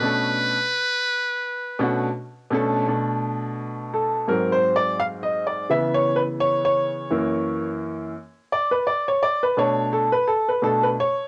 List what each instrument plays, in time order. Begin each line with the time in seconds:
Already playing: upright piano B3 F#4, muted trumpet B4
0.01 upright piano B2 A3 C#4 D4 A4
1.79 upright piano B2 A3 C#4 D4 F#4
2.51 upright piano B2 A3 C#4 D4 A4
2.87 upright piano B2 A3 D4
3.94 upright piano A4
4.28 upright piano G#2 F#3 C4 A#4
4.52 upright piano C5
4.76 upright piano D5
5.00 upright piano F5
5.23 upright piano D#5
5.47 upright piano D5
5.69 upright piano C#3 E3 B3 E5
5.94 upright piano C#5
6.16 upright piano B4
6.40 upright piano C#5
6.65 upright piano C#5
7.10 upright piano F#2 E3 A#3
8.52 upright piano D5
8.71 upright piano B4
8.87 upright piano D5
9.08 upright piano C#5
9.22 upright piano D5
9.43 upright piano B4
9.57 upright piano B2 A3 D4 C#5
9.93 upright piano A4
10.12 upright piano B4
10.28 upright piano A4
10.49 upright piano B4
10.62 upright piano B2 A3 D4 A4
10.83 upright piano B4
11.00 upright piano C#5